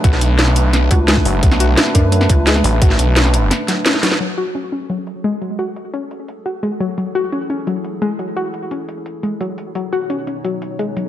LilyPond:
<<
  \new Staff \with { instrumentName = "Analog synth pad" } { \time 4/4 \key fis \minor \tempo 4 = 173 << { <a b'>1~ | <a b'>1~ | <a b'>1 | <gis' a'>1~ |
<gis' a'>1~ | <gis' a'>1~ | <gis' a'>1 | <b cis''>1 | } \\ { d'1~ | d'1~ | d'1 | fis'1~ |
fis'1 | e'1~ | e'1 | dis'1 | } >> }
  \new Staff \with { instrumentName = "Synth arpeggio sound" } { \clef bass \time 4/4 \key fis \minor fis'8 r8 cis'8 r4 fis'8 gis8 fis8 | fis8 fis'8 cis'8 d'8 fis8 r8 gis8 fis8 | fis'8 r8 cis'8 r4 fis8 cis'8 fis8 | fis8 fis'8 cis'8 cis'8 fis8 r8 gis8 fis8 |
fis'8 r8 cis'8 r4 fis'8 gis8 fis8 | fis8 fis'8 cis'8 cis'8 fis8 r8 gis8 fis8 | fis'8 r8 cis'8 r4 gis8 fis8 r8 | fis8 fis'8 cis'8 cis'8 fis8 r8 gis8 fis8 | }
  \new Staff \with { instrumentName = "Wobble bass" } { \clef bass \time 4/4 \key fis \minor r2 r8 cis,4 r8 | r4. fis,4 cis,4 r8 | r1 | r1 |
r1 | r1 | r1 | r1 | }
  \new Staff \with { instrumentName = "Detuned saw bass" } { \clef bass \time 4/4 \key fis \minor b,,2~ b,,8 r4 fis,,8 | b,,4 r2 r8 a,,8~ | a,,8 b,,4. r2 | r1 |
r1 | r1 | r1 | r1 | }
  \new DrumStaff \with { instrumentName = "Drums" } \drummode { \time 4/4 <hh bd>16 sn16 hh8 <hh sn>16 sn16 hh8 <hh sn>8 <hh bd>8 <hh sn>16 bd16 hho8 | <hh bd>16 sn16 hh8 <hh sn>16 sn16 <hh bd>8 hh16 sn16 <hh bd>8 <hh sn>16 sn16 hho8 | <hh bd>16 sn16 hh8 <hh sn>16 sn16 hh8 <hh sn>8 <hh sn>8 <hh sn>16 sn16 <hho sn>16 sn16 | hh8 hh8 hh8 hh8 hh8 hh8 hh8 hh8 |
hh8 hh8 hh8 hh8 hh8 hh8 hh8 hh8 | hh8 hh8 hh8 hh8 hh8 hh8 hh8 hh8 | hh8 hh8 hh8 hh8 hh8 hh8 hh8 hh8 | hh8 hh8 hh8 hh8 hh8 hh8 hh8 hh8 | }
>>